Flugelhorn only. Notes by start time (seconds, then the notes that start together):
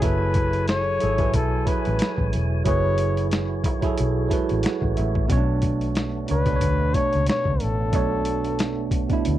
0.04 B4
0.70 C#5
1.36 A4
1.68 B4
2.67 C#5
6.29 B4
6.95 C#5
7.28 C#5
7.62 A4